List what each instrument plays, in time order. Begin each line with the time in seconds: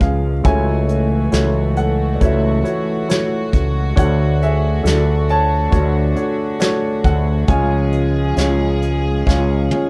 Already playing: grand piano C#2 F3 G#3 C#4 D4 F4 G#4 B4 C#5, string section F3
0.00 fretless electric bass C#2, grand piano G#4 F5, kick, closed hi-hat
0.44 grand piano C#2 C#3 A3 E4 F#4 C#5 G#5, fretless electric bass C#2, string section E3 A3 F#4, kick, closed hi-hat
0.89 closed hi-hat
1.32 fretless electric bass C#2, grand piano A3 E4 F#4 C#5, snare, closed hi-hat
1.76 grand piano A4 F#5, closed hi-hat
2.15 grand piano D5
2.20 fretless electric bass C#2, grand piano A3 E4 F#4 A4 C#5 E5, kick, closed hi-hat
2.63 grand piano A3 E4 F#4 C#5, closed hi-hat
3.08 grand piano A3 E4 F#4 C#5, snare, closed hi-hat
3.53 fretless electric bass C#2, kick, closed hi-hat
3.96 grand piano D2 D3 A3 D4 F#4 A4 C#5 F#5, fretless electric bass D2, string section D3, kick, closed hi-hat
4.42 grand piano G#4 E5, closed hi-hat
4.83 fretless electric bass D2, grand piano A3 D4 F#4 A4, closed hi-hat
4.87 grand piano F#4 D5, snare
5.29 grand piano C#5 A5, closed hi-hat
5.70 fretless electric bass D2, grand piano A3 D4 F#4 C#5, kick, closed hi-hat
6.15 grand piano A3 D4 F#4 C#5, closed hi-hat
6.60 grand piano A3 D4 F#4 C#5, snare, closed hi-hat
7.04 fretless electric bass D2, grand piano A4 F#5, kick, closed hi-hat
7.47 fretless electric bass C#2, grand piano C#2 C#3 G#3 C#4 F4 C#5 G#5, string section F3 G#4, kick, closed hi-hat
7.92 closed hi-hat
8.36 fretless electric bass C#2, grand piano G#3 C#4 F4 C#5, snare, closed hi-hat
8.82 closed hi-hat
9.26 fretless electric bass C#2, grand piano G#3 C#4 F4 G#4 C#5 F5, kick, snare
9.71 grand piano G#3 C#4 F4 C#5, high tom